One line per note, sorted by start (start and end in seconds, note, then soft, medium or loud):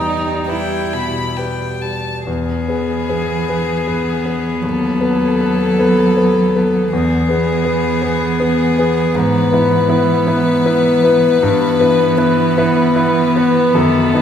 0.00 2.23 E2 medium
0.00 1.83 G3 medium
0.00 0.75 G3 soft
0.00 0.50 D#4 medium
0.00 0.34 G5 medium
0.47 1.38 E4 medium
0.47 0.90 G4 soft
0.47 0.90 B4 soft
0.47 0.95 G5 medium
0.93 1.65 B2 soft
0.93 1.39 B5 medium
1.37 1.79 G4 soft
1.37 1.79 B4 soft
1.37 1.83 G5 medium
1.82 2.27 G3 soft
1.82 2.25 A5 medium
2.26 2.67 E2 medium
2.26 4.59 E3 medium
2.26 6.88 B3 medium
2.26 4.64 G#4 medium
2.68 3.05 B3 soft
2.68 3.05 G#4 soft
2.68 3.05 B4 soft
3.09 3.45 B3 medium
3.09 3.45 G#4 soft
3.09 3.45 B4 soft
3.49 3.84 B3 soft
3.49 3.84 G#4 soft
3.49 3.85 B4 medium
3.87 4.22 B3 soft
3.87 4.22 G#4 soft
3.87 4.22 B4 medium
4.25 4.59 B3 soft
4.25 4.59 G#4 soft
4.25 4.60 B4 soft
4.62 5.00 D#2 medium
4.62 6.87 F#3 medium
4.62 6.91 A4 medium
5.01 5.36 B3 medium
5.01 5.37 A4 soft
5.01 5.37 B4 soft
5.41 5.75 B3 medium
5.41 5.75 A4 soft
5.41 5.75 B4 medium
5.79 6.13 B3 medium
5.79 6.13 A4 medium
5.79 6.14 B4 medium
6.17 6.51 B3 medium
6.17 6.51 A4 soft
6.17 6.51 B4 medium
6.55 6.89 B3 soft
6.55 6.89 A4 medium
6.55 6.89 B4 medium
6.91 7.28 E2 medium
6.91 11.38 E3 medium
6.91 11.38 B3 medium
6.91 9.16 G#4 medium
7.29 7.62 B3 soft
7.29 7.62 G#4 medium
7.29 7.62 B4 medium
7.65 7.98 B3 medium
7.65 7.99 G#4 medium
7.65 7.99 B4 medium
8.02 8.36 B3 medium
8.02 8.36 G#4 medium
8.02 8.37 B4 medium
8.40 8.74 B3 medium
8.40 8.74 G#4 medium
8.40 8.74 B4 medium
8.79 9.11 B3 medium
8.79 9.12 G#4 soft
8.79 9.12 B4 medium
9.15 9.50 G#2 medium
9.15 13.75 B4 medium
9.53 9.85 B3 medium
9.53 9.86 E4 medium
9.53 9.86 B4 medium
9.89 10.23 B3 medium
9.89 10.23 E4 medium
9.89 10.23 B4 medium
10.27 10.62 B3 medium
10.27 10.62 E4 medium
10.27 10.62 B4 medium
10.66 11.00 B3 medium
10.66 11.01 E4 medium
10.66 11.01 B4 medium
11.04 11.38 B3 medium
11.04 11.38 E4 medium
11.04 11.39 B4 medium
11.41 11.78 G2 medium
11.41 13.69 E3 medium
11.41 14.22 B3 medium
11.80 12.13 B3 medium
11.80 12.14 E4 medium
11.80 12.14 B4 medium
12.17 12.52 B3 medium
12.17 12.53 E4 medium
12.17 12.53 B4 medium
12.58 12.93 B3 medium
12.58 12.93 E4 medium
12.58 12.93 B4 medium
12.96 13.31 B3 medium
12.96 13.32 E4 medium
12.96 13.32 B4 medium
13.36 13.71 B3 medium
13.36 13.71 E4 medium
13.36 13.72 B4 medium
13.74 14.12 F#2 medium
13.74 14.22 D#3 loud
13.74 14.22 A4 medium
14.13 14.22 A3 medium
14.13 14.22 D#4 medium
14.13 14.22 B4 medium